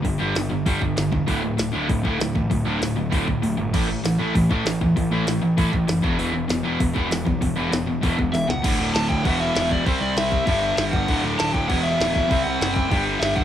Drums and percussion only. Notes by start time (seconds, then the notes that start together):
0.05 kick, open hi-hat
0.35 snare, open hi-hat
0.66 kick, open hi-hat
0.82 kick
0.97 snare, open hi-hat
1.12 kick
1.28 kick, open hi-hat
1.58 snare, open hi-hat
1.89 kick, open hi-hat
2.05 kick
2.20 snare, open hi-hat
2.35 kick
2.51 kick, open hi-hat
2.82 snare, open hi-hat
3.12 kick, open hi-hat
3.28 kick
3.43 open hi-hat
3.74 kick, crash
4.05 snare, open hi-hat
4.35 kick, open hi-hat
4.51 kick
4.66 snare, open hi-hat
4.81 kick
4.97 kick, open hi-hat
5.27 snare, open hi-hat
5.58 kick, open hi-hat
5.73 kick
5.88 snare, open hi-hat
6.04 kick
6.19 open hi-hat
6.49 snare, open hi-hat
6.80 kick, open hi-hat
6.96 kick
7.11 snare, open hi-hat
7.27 kick
7.42 kick, open hi-hat
7.72 snare, open hi-hat
8.03 kick, open hi-hat
8.19 kick
8.34 snare, open hi-hat
8.50 snare
8.64 kick, crash
8.95 snare, crash
9.10 kick
9.25 kick, crash
9.55 snare, crash
9.71 kick
9.86 kick, crash
10.17 snare, crash
10.32 kick
10.47 kick, crash
10.77 snare, crash
10.93 kick
11.08 kick, crash
11.39 snare, crash
11.54 kick
11.70 kick, crash
12.00 snare, crash
12.16 kick
12.31 kick, crash
12.61 snare, crash
12.76 kick
12.91 kick, crash
13.22 snare, crash
13.37 kick